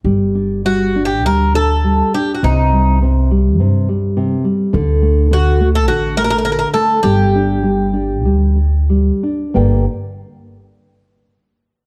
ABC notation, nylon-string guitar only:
X:1
M:4/4
L:1/8
Q:1/4=102
K:Gm
V:1 name="Nylon-string guitar" clef=bass
G, D G, D G, D G, D | C, G, C, G, C, G, C, G, | D, A, D, A, D, A, D, A, | G, D G, D G, D G, D |
[G,,D,B,Gdg] z6 z |]